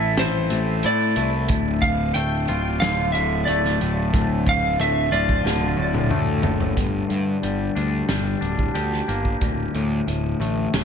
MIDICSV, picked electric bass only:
0, 0, Header, 1, 2, 480
1, 0, Start_track
1, 0, Key_signature, -1, "minor"
1, 0, Tempo, 659341
1, 1096, Time_signature, 4, 2, 24, 8
1, 7892, End_track
2, 0, Start_track
2, 0, Title_t, "Picked electric bass"
2, 0, Program_c, 0, 34
2, 0, Note_on_c, 0, 33, 83
2, 121, Note_off_c, 0, 33, 0
2, 132, Note_on_c, 0, 33, 78
2, 362, Note_off_c, 0, 33, 0
2, 372, Note_on_c, 0, 33, 72
2, 601, Note_off_c, 0, 33, 0
2, 616, Note_on_c, 0, 45, 80
2, 843, Note_off_c, 0, 45, 0
2, 848, Note_on_c, 0, 36, 78
2, 1078, Note_off_c, 0, 36, 0
2, 1086, Note_on_c, 0, 26, 84
2, 1543, Note_off_c, 0, 26, 0
2, 1571, Note_on_c, 0, 26, 78
2, 1799, Note_off_c, 0, 26, 0
2, 1812, Note_on_c, 0, 26, 87
2, 2039, Note_off_c, 0, 26, 0
2, 2045, Note_on_c, 0, 26, 86
2, 2501, Note_off_c, 0, 26, 0
2, 2535, Note_on_c, 0, 26, 83
2, 2760, Note_off_c, 0, 26, 0
2, 2774, Note_on_c, 0, 26, 81
2, 2999, Note_off_c, 0, 26, 0
2, 3011, Note_on_c, 0, 26, 78
2, 3464, Note_off_c, 0, 26, 0
2, 3493, Note_on_c, 0, 26, 88
2, 3718, Note_off_c, 0, 26, 0
2, 3725, Note_on_c, 0, 26, 93
2, 3954, Note_off_c, 0, 26, 0
2, 3965, Note_on_c, 0, 26, 85
2, 4194, Note_off_c, 0, 26, 0
2, 4200, Note_on_c, 0, 26, 83
2, 4431, Note_off_c, 0, 26, 0
2, 4440, Note_on_c, 0, 38, 85
2, 4671, Note_off_c, 0, 38, 0
2, 4682, Note_on_c, 0, 30, 81
2, 4913, Note_off_c, 0, 30, 0
2, 4924, Note_on_c, 0, 31, 62
2, 5109, Note_off_c, 0, 31, 0
2, 5172, Note_on_c, 0, 43, 67
2, 5354, Note_off_c, 0, 43, 0
2, 5411, Note_on_c, 0, 31, 67
2, 5594, Note_off_c, 0, 31, 0
2, 5651, Note_on_c, 0, 38, 73
2, 5835, Note_off_c, 0, 38, 0
2, 5892, Note_on_c, 0, 31, 66
2, 6075, Note_off_c, 0, 31, 0
2, 6128, Note_on_c, 0, 26, 63
2, 6313, Note_off_c, 0, 26, 0
2, 6369, Note_on_c, 0, 38, 69
2, 6555, Note_off_c, 0, 38, 0
2, 6613, Note_on_c, 0, 31, 72
2, 6798, Note_off_c, 0, 31, 0
2, 6851, Note_on_c, 0, 26, 76
2, 7037, Note_off_c, 0, 26, 0
2, 7095, Note_on_c, 0, 38, 67
2, 7280, Note_off_c, 0, 38, 0
2, 7333, Note_on_c, 0, 26, 72
2, 7519, Note_off_c, 0, 26, 0
2, 7570, Note_on_c, 0, 33, 81
2, 7758, Note_off_c, 0, 33, 0
2, 7813, Note_on_c, 0, 26, 74
2, 7892, Note_off_c, 0, 26, 0
2, 7892, End_track
0, 0, End_of_file